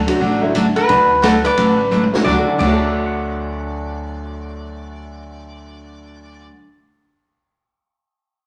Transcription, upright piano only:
0.07 D3 F#3 A3 D4 F#4
0.41 D3 F#3 A3 D4 E4
2.13 D2 D3 F#3 A3 D4 F#4
2.20 D3
2.26 A3
2.33 F#4
2.39 A4
2.48 D2
2.54 D3
2.60 A3 C#5
2.67 F#4 E5
2.73 A4 A5
2.85 D6
2.96 F#6
3.06 C#7

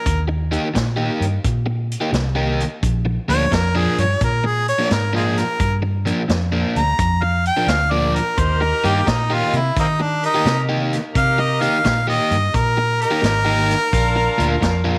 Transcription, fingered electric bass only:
0.06 D#2
0.75 A#2
1.20 G2
1.45 A#2
2.12 C2
2.83 A#1
3.29 D2
3.52 F2
3.98 G2
4.21 A#2
4.91 G#2
5.60 G2
6.29 F2
6.76 D2
6.99 F2
7.67 D2
8.38 D#2
8.84 G2
9.07 A#2
9.53 C3
9.77 D#3
10.45 C3
11.15 C3
11.85 A#2
12.31 G2
12.54 A#2
13.23 G#1
13.93 A#1
14.39 D2
14.62 F2

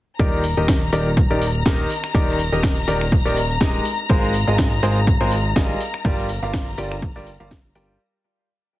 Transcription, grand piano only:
0.19 D#3 D#4 G4 A#4 D5
0.57 D#3 D#4 G4 A#4 D#5
0.93 D#3 D#4 G4 A#4 D5
1.30 D#3 D#4 G4 A#4 D5
1.66 D#3 D#4 G4 A#4 D#5
2.14 D#3 D#4 G4 A#4 D5
2.52 D#3 D#4 G4 A#4 D#5
2.88 D#3 D#4 G4 A#4 D5
3.25 D#3 D#4 G4 A#4 D5
3.61 G#3 D#4 G4 A#4 D#5
4.09 G#3 F4 G#4 A#4 C5
4.47 G#3 F4 G#4 A#4 D#5
4.83 G#3 F4 G#4 A#4 C5
5.21 G#3 F4 G#4 A#4 C5
5.56 G3 F4 G#4 A#4 D#5
6.05 G3 F4 G4 A#4 D5
6.43 G3 F4 G4 A#4 F5
6.78 G3 F4 G4 A#4 D5
7.16 G3 F4 G4 A#4 D5
7.40 G3 F4 G4 A#4 F5
7.75 G3 F4 G4 A#4 G5

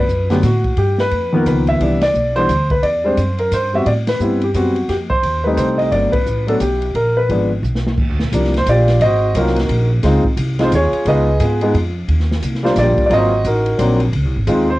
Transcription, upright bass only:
0.09 F#2
0.43 A2
0.77 G2
1.11 F2
1.46 C#2
1.80 C2
2.14 B1
2.48 D2
2.83 E2
3.17 F#2
3.51 G2
3.86 A2
4.20 G2
4.54 F#2
4.89 F2
5.23 D#2
5.57 C2
5.92 G1
6.26 A1
6.60 B1
6.95 A#1
7.29 G#1
7.63 B1
7.98 D#2
8.09 D2
8.20 A#1
8.32 C2
8.66 A#1
9.01 G#1
9.35 C2
9.69 A#1
10.03 C#2
10.24 muted upright bass stroke
10.37 C2
10.71 D#2
10.93 muted upright bass stroke
11.05 C#2
11.40 G#2
11.74 F2
12.08 D#2
12.42 C2
12.76 A#1
12.98 muted upright bass stroke
13.10 G#1
13.44 A1
13.79 A#1
14.13 C#2
14.25 C2
14.36 G#1
14.47 D#2

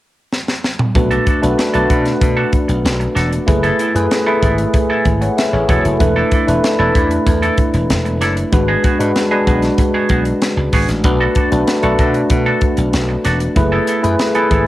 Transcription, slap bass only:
0.95 B1
1.43 B1
1.75 B1
1.90 B2
2.21 B2
2.69 B1
2.84 B1
3.16 E1
3.48 F#1
3.95 F#2
4.43 G#1
5.05 G#1
5.53 A1
5.69 E1
5.85 F#1
6.00 E1
6.48 E1
6.79 E1
7.27 E2
7.74 E1
7.90 E1
8.21 F#1
8.53 G#1
9.00 G#2
9.47 B1
10.10 B1
10.57 C#2
10.73 G#1
10.88 A1
11.04 B1
11.52 B1
11.83 B1
11.99 B2
12.30 B2
12.78 B1
12.93 B1
13.25 E1
13.56 F#1
14.04 F#2
14.51 G#1

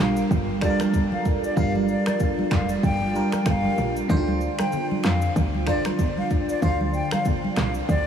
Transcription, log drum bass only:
0.00 A#1
0.31 G1
1.57 G1
2.51 F1
2.83 G1
3.46 G1
3.78 A#1
4.10 D2
5.04 F2
5.36 D2
6.62 D2
7.57 C2
7.89 D2

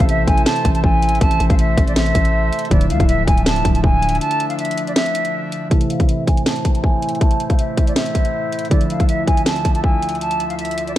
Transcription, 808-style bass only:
0.00 A1
0.27 A1
0.65 A1
0.84 A1
1.21 A1
1.40 A1
1.50 A1
1.77 A1
2.15 A1
2.71 D1
2.90 D2
3.00 D1
3.27 D1
3.65 D1
3.84 D1

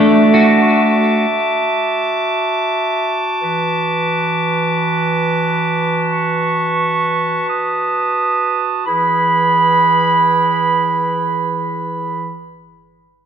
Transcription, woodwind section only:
Already playing: F#4 E5 A5 D6
3.40 E3 B4
6.13 C#6
7.50 D#6
8.86 E3 E4 G#4 B4 B5

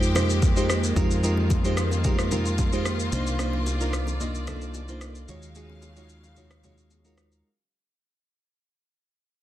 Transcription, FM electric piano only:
Already playing: G#3 D#4 F4 G4 A#4 C5
0.15 G#3 D#4 F4 G4 C5
0.56 G#3 D#4 F4 G4 C5
0.96 G#3 D#4 F4 G4 A#4
1.23 G#3 D#4 F4 G4 A#4
1.64 G#3 D#4 F4 G4 C5
2.05 G#3 D#4 F4 G4 A#4
2.31 G#3 D#4 F4 G4 A#4
2.72 G#3 D#4 F4 G4 C5
3.12 A#3 D4 D#4 F4 C5
3.39 A#3 D4 D#4 F4 C5
3.80 A#3 D4 D#4 F4 A#4
4.20 A#3 D4 D#4 F4 D#5
4.47 A#3 D4 D#4 F4 A4
4.88 A#3 D4 D#4 F4 C5
5.28 G#3 D#4 F4 F#4 C#5
5.55 G#3 D#4 F4 F#4 G#4
5.96 G#3 D#4 F4 F#4 C#5
6.37 G#3 D#4 F4 F#4 C#5
6.64 G#3 D#4 F4 F#4 C#5
7.04 G#3 D#4 F4 F#4 A#4

